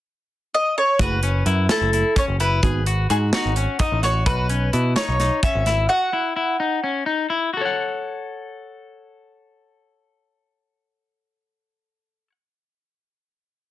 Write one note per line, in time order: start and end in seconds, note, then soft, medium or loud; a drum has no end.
0.54 0.77 D#5 medium
0.78 0.99 C#5 medium
0.99 1.42 F#1 medium
0.99 1.16 A3 medium
0.99 1.16 E4 medium
0.99 1.19 F#4 medium
0.99 1.16 G#4 medium
0.99 1.72 B4 medium
0.99 kick medium
0.99 closed hi-hat medium
1.23 1.43 C#4 medium
1.23 closed hi-hat medium
1.46 1.67 F#2 medium
1.46 1.66 E4 medium
1.46 closed hi-hat medium
1.69 2.02 A3 medium
1.69 1.90 E4 medium
1.69 2.03 E4 medium
1.69 2.03 A4 medium
1.69 2.18 A4 medium
1.69 snare loud
1.69 closed hi-hat medium
1.81 2.02 F#1 medium
1.93 2.13 E4 medium
1.93 closed hi-hat medium
2.16 2.36 C#4 medium
2.16 2.24 C#5 medium
2.16 kick medium
2.16 closed hi-hat medium
2.28 2.60 F#1 medium
2.40 2.60 E4 medium
2.40 3.12 B4 medium
2.40 closed hi-hat medium
2.63 3.06 G#1 medium
2.63 2.79 B3 medium
2.63 2.80 D#4 soft
2.63 2.80 F#4 medium
2.63 2.83 G#4 medium
2.63 kick medium
2.63 closed hi-hat medium
2.86 3.06 F#4 medium
2.86 closed hi-hat medium
3.10 3.31 G#2 medium
3.10 3.30 F#4 medium
3.10 3.17 G#4 medium
3.10 closed hi-hat medium
3.33 3.49 B3 medium
3.33 3.50 D#4 medium
3.33 3.53 D#4 medium
3.33 3.81 F#4 medium
3.33 3.50 F#4 medium
3.33 snare loud
3.33 closed hi-hat medium
3.45 3.66 G#1 medium
3.56 3.77 C#4 medium
3.56 closed hi-hat medium
3.79 4.00 D#4 medium
3.79 4.03 D#5 medium
3.79 kick medium
3.79 closed hi-hat medium
3.92 4.23 A1 medium
4.03 4.23 F#4 medium
4.03 4.26 C#5 medium
4.03 snare soft
4.03 closed hi-hat medium
4.26 4.69 B1 medium
4.26 4.46 F#4 medium
4.26 4.95 B4 medium
4.26 kick medium
4.26 closed hi-hat medium
4.50 4.69 C#4 medium
4.50 closed hi-hat medium
4.73 4.94 B2 medium
4.73 4.93 E4 medium
4.73 closed hi-hat soft
4.96 5.16 D#4 medium
4.96 5.43 C#5 medium
4.96 snare loud
4.96 closed hi-hat medium
5.08 5.29 B1 medium
5.20 5.40 D#4 medium
5.20 snare soft
5.20 closed hi-hat medium
5.43 5.63 C#4 medium
5.43 5.91 E5 medium
5.43 kick medium
5.43 closed hi-hat medium
5.55 5.86 G#1 medium
5.66 5.86 E4 medium
5.66 snare soft
5.66 closed hi-hat medium
5.89 6.09 F#4 medium
5.89 7.02 F#5 medium
6.13 6.33 E4 medium
6.36 6.56 E4 medium
6.60 6.79 D#4 medium
6.84 7.03 C#4 medium
7.06 7.26 D#4 medium
7.30 7.49 E4 medium
7.53 7.65 F#4 medium
7.53 12.27 A4 medium
7.61 12.30 C#5 medium
7.61 12.32 F#5 medium